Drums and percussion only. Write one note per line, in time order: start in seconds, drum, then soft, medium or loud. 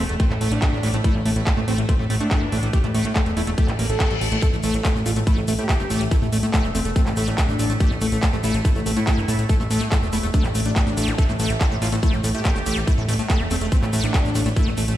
0.09 closed hi-hat medium
0.20 kick loud
0.20 closed hi-hat medium
0.30 clap soft
0.41 open hi-hat loud
0.52 closed hi-hat medium
0.62 kick loud
0.62 clap loud
0.62 closed hi-hat medium
0.83 open hi-hat medium
0.94 closed hi-hat medium
1.04 kick loud
1.04 closed hi-hat medium
1.25 open hi-hat loud
1.36 closed hi-hat medium
1.47 kick loud
1.47 clap loud
1.47 closed hi-hat medium
1.68 open hi-hat medium
1.78 closed hi-hat medium
1.89 kick loud
1.89 closed hi-hat medium
2.10 open hi-hat loud
2.21 closed hi-hat medium
2.31 kick loud
2.31 clap loud
2.31 closed hi-hat medium
2.52 open hi-hat medium
2.63 closed hi-hat medium
2.73 kick loud
2.73 closed hi-hat medium
2.84 closed hi-hat soft
2.94 open hi-hat loud
3.05 closed hi-hat medium
3.16 kick loud
3.16 clap loud
3.16 closed hi-hat medium
3.26 closed hi-hat soft
3.37 open hi-hat medium
3.47 closed hi-hat medium
3.58 kick loud
3.58 closed hi-hat medium
3.68 clap soft
3.68 closed hi-hat soft
3.79 open hi-hat loud
3.90 closed hi-hat medium
4.00 kick loud
4.00 clap loud
4.00 closed hi-hat medium
4.11 closed hi-hat soft
4.21 open hi-hat medium
4.32 closed hi-hat medium
4.42 kick loud
4.42 closed hi-hat medium
4.42 shaker medium
4.53 shaker soft
4.63 open hi-hat loud
4.63 shaker medium
4.74 closed hi-hat medium
4.74 shaker soft
4.84 kick loud
4.84 clap loud
4.84 closed hi-hat medium
4.84 shaker medium
4.96 shaker soft
5.06 open hi-hat loud
5.06 shaker loud
5.16 closed hi-hat medium
5.16 shaker soft
5.27 kick loud
5.27 closed hi-hat medium
5.27 shaker soft
5.37 shaker soft
5.48 open hi-hat loud
5.48 shaker loud
5.59 closed hi-hat medium
5.59 shaker soft
5.69 kick loud
5.69 clap loud
5.69 closed hi-hat medium
5.69 shaker medium
5.80 shaker soft
5.90 open hi-hat medium
5.90 shaker loud
6.01 closed hi-hat medium
6.01 shaker soft
6.11 kick loud
6.11 closed hi-hat medium
6.11 shaker medium
6.23 shaker soft
6.33 open hi-hat loud
6.33 shaker loud
6.43 closed hi-hat medium
6.43 shaker soft
6.54 kick loud
6.54 clap loud
6.54 closed hi-hat medium
6.54 shaker medium
6.64 shaker soft
6.75 open hi-hat loud
6.75 shaker loud
6.85 closed hi-hat medium
6.85 shaker soft
6.96 kick loud
6.96 closed hi-hat medium
6.96 shaker medium
7.06 clap soft
7.06 shaker soft
7.16 open hi-hat loud
7.16 shaker loud
7.28 closed hi-hat medium
7.28 shaker soft
7.38 kick loud
7.38 clap loud
7.38 closed hi-hat medium
7.38 shaker medium
7.49 shaker soft
7.59 open hi-hat loud
7.59 shaker medium
7.70 closed hi-hat medium
7.70 shaker soft
7.80 kick loud
7.80 closed hi-hat medium
7.80 shaker medium
7.91 shaker soft
8.01 open hi-hat loud
8.01 shaker medium
8.12 closed hi-hat medium
8.12 shaker soft
8.23 kick loud
8.23 clap loud
8.23 closed hi-hat medium
8.23 shaker soft
8.33 shaker soft
8.44 open hi-hat loud
8.44 shaker medium
8.54 closed hi-hat medium
8.54 shaker soft
8.65 kick loud
8.65 closed hi-hat medium
8.65 shaker medium
8.75 shaker soft
8.86 open hi-hat loud
8.86 shaker loud
8.96 shaker soft
9.07 kick loud
9.07 clap loud
9.07 closed hi-hat medium
9.07 shaker medium
9.18 shaker soft
9.28 open hi-hat loud
9.28 shaker loud
9.39 closed hi-hat soft
9.39 shaker soft
9.49 kick loud
9.49 closed hi-hat medium
9.49 shaker medium
9.60 shaker soft
9.71 open hi-hat loud
9.71 shaker medium
9.81 closed hi-hat medium
9.81 shaker soft
9.92 kick loud
9.92 clap loud
9.92 closed hi-hat medium
9.92 shaker medium
10.03 shaker soft
10.13 open hi-hat loud
10.13 shaker loud
10.23 closed hi-hat soft
10.23 shaker soft
10.34 kick loud
10.34 closed hi-hat medium
10.34 shaker medium
10.44 clap soft
10.44 closed hi-hat soft
10.44 shaker soft
10.55 open hi-hat loud
10.55 shaker loud
10.66 closed hi-hat medium
10.66 shaker soft
10.76 kick loud
10.76 clap loud
10.76 closed hi-hat medium
10.76 shaker medium
10.87 shaker soft
10.97 open hi-hat loud
10.97 shaker loud
11.08 closed hi-hat soft
11.08 shaker soft
11.18 kick loud
11.18 closed hi-hat medium
11.18 shaker medium
11.29 shaker soft
11.39 open hi-hat loud
11.39 shaker medium
11.50 closed hi-hat medium
11.50 shaker soft
11.61 kick loud
11.61 clap loud
11.61 closed hi-hat medium
11.61 shaker soft
11.71 shaker soft
11.82 open hi-hat loud
11.82 shaker medium
11.92 closed hi-hat medium
11.92 shaker soft
12.03 kick loud
12.03 closed hi-hat medium
12.03 shaker medium
12.13 shaker soft
12.24 open hi-hat loud
12.24 shaker loud
12.35 closed hi-hat soft
12.35 shaker soft
12.44 kick loud
12.44 clap loud
12.44 closed hi-hat medium
12.44 shaker medium
12.56 shaker soft
12.66 open hi-hat loud
12.66 shaker loud
12.77 closed hi-hat soft
12.77 shaker soft
12.87 kick loud
12.87 closed hi-hat medium
12.87 shaker medium
12.98 shaker soft
13.09 open hi-hat loud
13.09 shaker medium
13.19 closed hi-hat medium
13.19 shaker soft
13.30 kick loud
13.30 clap loud
13.30 closed hi-hat medium
13.30 shaker medium
13.40 shaker soft
13.51 open hi-hat medium
13.51 shaker medium
13.61 closed hi-hat medium
13.61 shaker soft
13.72 kick loud
13.72 closed hi-hat medium
13.72 shaker soft
13.82 clap soft
13.82 shaker soft
13.93 open hi-hat loud
13.93 shaker medium
14.04 closed hi-hat medium
14.04 shaker soft
14.14 kick loud
14.14 clap loud
14.14 closed hi-hat medium
14.14 shaker medium
14.25 shaker soft
14.35 open hi-hat loud
14.35 shaker loud
14.45 closed hi-hat medium
14.45 shaker soft
14.56 kick loud
14.56 closed hi-hat medium
14.56 shaker soft
14.67 shaker soft
14.77 open hi-hat loud
14.77 shaker medium
14.88 closed hi-hat medium
14.88 shaker soft